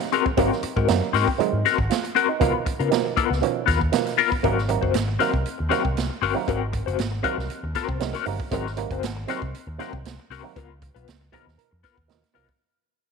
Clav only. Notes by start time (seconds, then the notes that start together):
Already playing: C3 D#3 F#3 A#3 F#4
0.13 G#4
0.37 C3 D#3 F#3 A#3
0.88 C3 D#3 F#3 A#3
1.38 C3 D#3 F#3 G#3
1.90 F4
2.15 F#4
2.29 D#4
2.40 B2 D#3 F3 A#3
2.91 B2 D#3 F3 A#3
3.42 B2 D#3 F3 C#4
3.92 B2 D#3 F3 A#3
4.43 C3 D#3 F#3 A#3
4.69 C3 D#3 F#3 A#3
5.19 C3 D#3 F#3 A#3
5.70 C3 D#3 F#3 A#3
6.34 C3 D#3 F#3 A#3
7.23 C3 D#3 F#3 A#3
8.00 C3 D#3 F#3 G#3
8.26 C3 D#3 F#3 A#3
8.51 C3 D#3 F#3 G#3
8.77 C3 D#3 F#3 A#3
9.27 C3 D#3 F#3 C4
9.78 C3 D#3 F#3 A#3
10.43 C3 D#3 F#3 A#3
11.32 B2 D#3 F3 A#3 G#4
11.58 A#4
11.84 B4
12.08 B2 D#3 F3 A#3 D#5
12.34 B2 D#3 F3 A#3